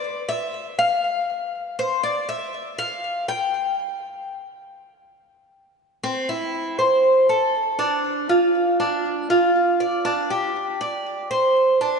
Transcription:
\new Staff \with { instrumentName = "Cuban tres" } { \time 4/4 \key a \minor \tempo 4 = 120 d''8 e''4 f''4 r4 c''8 | d''8 e''4 f''4 g''4 r8 | r1 | c'8 e'4 c''4 a'4 d'8~ |
d'8 f'4 d'4 f'4 d''8 | d'8 g'4 d''4 c''4 d'8 | }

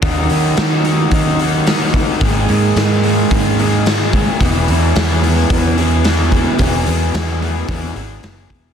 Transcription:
<<
  \new Staff \with { instrumentName = "Overdriven electric guitar" } { \time 4/4 \key e \lydian \tempo 4 = 110 <dis ais dis' fis'>4 <dis ais dis' fis'>8 <ais dis' fis'>8 <dis ais dis' fis'>8 <ais dis' fis'>8 <dis ais dis' fis'>4 | <gis ais dis' gis'>4 <gis ais dis' gis'>8 <ais dis' gis'>8 <gis ais dis' gis'>8 <ais dis' gis'>8 <gis ais dis' gis'>4 | <e, b, e b e' gis'>4 <e b e' gis'>8 <e b e' gis'>8 <e b e' gis'>8 <e b e' gis'>8 <e b e' gis'>4 | <e, b, e b e' gis'>4 <e b e' gis'>8 <e b e' gis'>8 <e b e' gis'>8 <e b e' gis'>8 <e b e' gis'>4 | }
  \new Staff \with { instrumentName = "Clean electric guitar" } { \time 4/4 \key e \lydian <dis fis cis' dis' ais'>1 | <gis ais dis' gis'>1 | <e, b, e b cis' gis'>1~ | <e, b, e b cis' gis'>1 | }
  \new Staff \with { instrumentName = "Overdriven electric guitar" } { \clef bass \time 4/4 \key e \lydian <dis ais dis'>8 <dis ais dis'>8 <dis ais dis'>8 <dis ais dis'>8 <dis ais dis'>8 <dis ais dis'>8 <dis ais dis'>8 <dis ais dis'>8 | <gis, dis gis>8 <gis, dis gis>8 <gis, dis gis>8 <gis, dis gis>8 <gis, dis gis>8 <gis, dis gis>8 <gis, dis gis>8 <gis, dis gis>8 | <e, b, e>8 <e, b, e>8 <e, b, e>8 <e, b, e>8 <e, b, e>8 <e, b, e>8 <e, b, e>8 <e, b, e>8 | <e, b, e>8 <e, b, e>8 <e, b, e>8 <e, b, e>8 <e, b, e>8 <e, b, e>8 <e, b, e>8 <e, b, e>8 | }
  \new Staff \with { instrumentName = "Fingered electric bass" } { \clef bass \time 4/4 \key e \lydian dis,8 dis8 dis4 dis2 | gis,,8 gis,8 gis,4 gis,2 | e,,8 e,8 e,4 e,2 | e,,8 e,8 e,4 e,8 gis,,8 fis,,8 e,,8 | }
  \new DrumStaff \with { instrumentName = "Drums" } \drummode { \time 4/4 <hho bd>8 hho8 <hho sn>8 hho8 <hho bd>8 hho8 <hho sn>8 <hho bd>8 | <hho bd>8 hho8 <hho sn>8 hho8 <hho bd>8 hho8 <hho sn>8 <hho bd>8 | <hho bd>8 hho8 <hho sn>8 hho8 <hho bd>8 hho8 <hho sn>8 <hho bd>8 | <hho bd>8 hho8 <hho sn>8 hho8 <hho bd>8 hho8 <hho sn>8 <hho bd>8 | }
>>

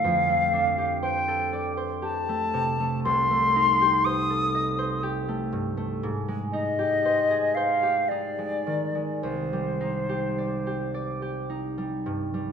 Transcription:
<<
  \new Staff \with { instrumentName = "Flute" } { \time 3/4 \key c \dorian \tempo 4 = 59 f''4 g''8 r8 a''4 | c'''4 ees'''4 r4 | r8 ees''4 f''8 d''4 | c''2 r4 | }
  \new Staff \with { instrumentName = "Harp" } { \time 3/4 \key c \dorian <f, a d' a' c'' d''>16 a16 d'16 g'16 c''16 a'16 d''16 c''16 g'16 a16 c16 a16 | c,16 a16 ees'16 g'16 c''16 a'16 ees''16 c''16 g'16 a16 g,16 a16 | aes,16 aes16 ees'16 g'16 c''16 aes'16 c''16 g'16 ees'16 aes16 ees16 aes16 | c,16 g16 ees'16 g'16 d''16 g'16 d''16 g'16 ees'16 g16 g,16 g16 | }
>>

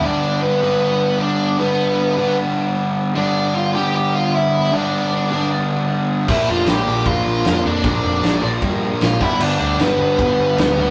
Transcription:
<<
  \new Staff \with { instrumentName = "Lead electric guitar" } { \time 4/4 \key g \mixolydian \tempo 4 = 154 <d' d''>4 <b b'>4 <b b'>4 <d' d''>4 | <b b'>2 r2 | <d' d''>4 <f' f''>8 <g' g''>8 <g' g''>8 <f' f''>8 <e' e''>4 | <d' d''>2 r2 |
<e' e''>8 <f' f''>8 <g' g''>4 <f' f''>4. <d' d''>8~ | <d' d''>4. r4. <f' f''>8 <e' e''>8 | <d' d''>4 <b b'>4 <b b'>2 | }
  \new Staff \with { instrumentName = "Overdriven electric guitar" } { \clef bass \time 4/4 \key g \mixolydian <g, d g b d'>4. <g, d g b d'>2~ <g, d g b d'>8 | <g, d g b d'>4. <g, d g b d'>2~ <g, d g b d'>8 | <g, d g b d'>4. <g, d g b d'>2~ <g, d g b d'>8 | <g, d g b d'>4. <g, d g b d'>2~ <g, d g b d'>8 |
<bes, d f bes d'>4. <bes, d f bes d'>2~ <bes, d f bes d'>8 | <bes, d f bes d'>4. <bes, d f bes d'>2 <g, d g b d'>8~ | <g, d g b d'>4 <g, d g b d'>2~ <g, d g b d'>8 <g, d g b d'>8 | }
  \new Staff \with { instrumentName = "Distorted electric guitar" } { \clef bass \time 4/4 \key g \mixolydian <g, d g>4. <g, d g>2~ <g, d g>8 | <g, d g>4. <g, d g>2~ <g, d g>8 | <g, d g>4. <g, d g>2~ <g, d g>8 | <g, d g>4. <g, d g>2~ <g, d g>8 |
<bes, f bes>4. <bes, f bes>2~ <bes, f bes>8 | <bes, f bes>4. <bes, f bes>2 <g, d g>8~ | <g, d g>4 <g, d g>2~ <g, d g>8 <g, d g>8 | }
  \new Staff \with { instrumentName = "Picked electric bass" } { \clef bass \time 4/4 \key g \mixolydian r1 | r1 | r1 | r1 |
bes,,8 f,,8 bes,,8 bes,,8 bes,,8 bes,,8 f,,8 f,8 | bes,,8 f,,8 bes,,8 bes,,8 g,4 bes,,8 g,,8 | g,,8 d,8 g,,8 g,,8 g,,8 g,,8 d,8 d,8 | }
  \new DrumStaff \with { instrumentName = "Drums" } \drummode { \time 4/4 r4 r4 r4 r4 | r4 r4 r4 r4 | r4 r4 r4 r4 | r4 r4 r4 r4 |
<cymc bd>4 <cymr sn>4 <bd cymr>4 <cymr sn>4 | <bd cymr>4 <cymr sn>4 <bd cymr>4 <cymr sn>8 bd8 | cymc4 <cymr sn>4 <bd cymr>4 <cymr sn>4 | }
>>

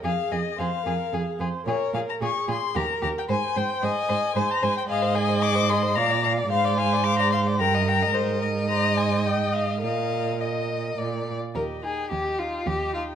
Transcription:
<<
  \new Staff \with { instrumentName = "Violin" } { \time 3/4 \key aes \major \tempo 4 = 110 f''8 ees''8 f''4. r8 | des''8 f''16 bes''16 des'''8 c'''8 bes''8 bes''16 g''16 | aes''8 g''8 aes''4~ aes''16 bes''16 aes''16 g''16 | \key ees \major f''8 aes''8 d'''8 c'''8 bes''8 bes''8 |
f''8 aes''8 d'''16 bes''16 c'''8 bes''8 bes''8 | c''8 ees''8 bes''8 aes''8 g''8 f''8 | f''4 ees''4 r4 | ees''8 g''8 ees''8 g''8 ees''8 g''8 | }
  \new Staff \with { instrumentName = "Violin" } { \time 3/4 \key aes \major aes'8 aes'8 aes'8 aes'8 aes'8 aes'8 | aes'8 aes'8 aes'8 aes'8 g'8 g'8 | c''8 c''8 c''8 c''8 c''8 c''8 | \key ees \major aes'16 c''16 aes'16 c''16 aes'16 c''16 aes'16 c''16 f''16 d''16 f''16 d''16 |
f''16 d''16 f''16 d''16 f''16 d''16 f''16 d''16 g''16 ees''16 g''16 ees''16 | ees''2. | ees''4 ees''4 d''8. r16 | bes'8 aes'8 g'8 f'8 g'8 f'8 | }
  \new Staff \with { instrumentName = "Viola" } { \time 3/4 \key aes \major aes'4 c''8 bes'8 aes'8 c''8 | bes'4 aes'4 bes'4 | c''4 ees''4 c''4 | \key ees \major ees''2 d''4 |
c''2 bes'4~ | bes'4 c''4 ees''4 | bes'2~ bes'8 r8 | g'8 ees'8 g'8 ees'8 g'8 ees'8 | }
  \new Staff \with { instrumentName = "Cello" } { \clef bass \time 3/4 \key aes \major f,8 f,8 f,8 f,8 f,8 f,8 | bes,8 bes,8 bes,8 bes,8 ees,8 ees,8 | aes,8 aes,8 aes,8 aes,8 aes,8 aes,8 | \key ees \major aes,2 bes,4 |
aes,2 g,4 | aes,2. | bes,2 bes,8 r8 | ees,4 ees,4 ees,4 | }
>>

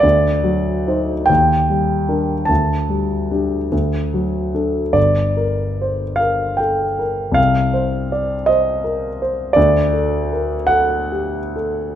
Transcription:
\new Staff \with { instrumentName = "Grand piano" } { \time 6/8 \key d \phrygian \tempo 4. = 50 << { d''4. g''4. | a''2~ a''8 r8 | d''4. f''8 g''4 | f''4. ees''4. |
d''4. fis''4. | } \\ { d,8 fis8 <ees' c''>8 ees,8 g8 <d' bes'>8 | d,8 g8 <d' g'>8 d,8 fis8 <d' a'>8 | g,,8 bes'8 c''8 bes'8 a'8 bes'8 | c,8 c''8 d''8 c''8 bes'8 c''8 |
d,8 a'8 bes'8 a'8 g'8 a'8 | } >> }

